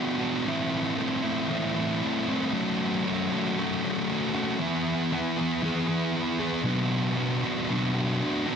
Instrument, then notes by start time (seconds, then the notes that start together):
distorted electric guitar
Already playing: B3 D4 F#4
0.19 B3 D4 F#4
0.46 A2 E3 A3 C4 E4
0.96 E3 A3 C4 E4
1.22 A3 C4 E4
1.49 A2 E3 A3 C4 E4
1.75 A3 C4 E4
2.26 A3 C4 E4
2.52 F#3 A3 C#4 F#4
3.04 F#3 A3 C#4 F#4
3.32 A3 C#4 F#4
3.57 F#3 A3 C#4 F#4
3.82 A3 C#4 F#4
4.34 A3 C#4 F#4
4.59 E3 B3 E4 G#4
5.12 E3 B3 E4 G#4
5.37 B3 E4 G#4
5.62 E3 B3 E4 G#4
5.87 B3 E4 G#4
6.39 B3 E4 G#4
6.63 B2 F#3 B3 D4 F#4
7.16 F#3 B3 D4 F#4
7.43 B3 D4 F#4
7.69 B2 F#3 B3 D4 F#4
7.94 B3 D4 F#4
8.46 B3 D4 F#4